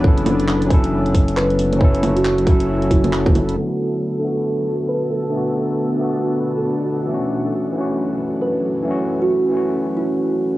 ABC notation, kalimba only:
X:1
M:4/4
L:1/16
Q:"Swing 16ths" 1/4=136
K:F#m
V:1 name="Kalimba"
z12 B2 z2 | z3 F F z4 z E3 z3 | z12 B2 A2 | z8 z3 A3 z2 |
z12 B2 z2 | z3 F F z4 z E2 z4 |]